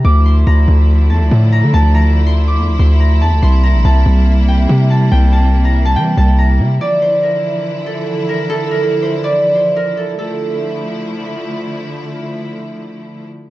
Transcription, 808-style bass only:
X:1
M:4/4
L:1/16
Q:1/4=142
K:Dm
V:1 name="808-style bass" clef=bass
D,,4 D,,2 D,,4 E,, D,, A,,3 D, | D,,8 E,, D,, D,,4 E,, D,, | C,,3 B,,, C,,2 C,,6 C,4 | C,,8 E,2 C,,4 C,2 |
z16 | z16 | z16 | z16 |]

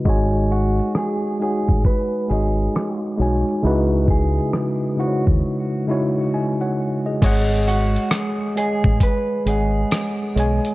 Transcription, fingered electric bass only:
X:1
M:4/4
L:1/16
Q:"Swing 16ths" 1/4=67
K:G#phr
V:1 name="Fingered electric bass" clef=bass
G,,,4 z3 A,,, z2 G,,,2 z2 B,,, z | C,,4 z3 D,, z8 | G,,,4 z3 A,,, z2 G,,,2 z2 B,,, z |]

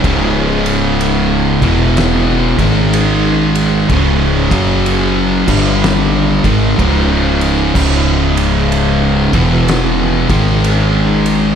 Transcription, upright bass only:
X:1
M:4/4
L:1/8
Q:"Swing" 1/4=62
K:C#m
V:1 name="Upright bass" clef=bass
C,,,3 E,,,2 G,,,3 | C,,, F,,,2 =G,,,2 ^G,,, C,,,2 | C,,,3 E,,,2 G,,,3 |]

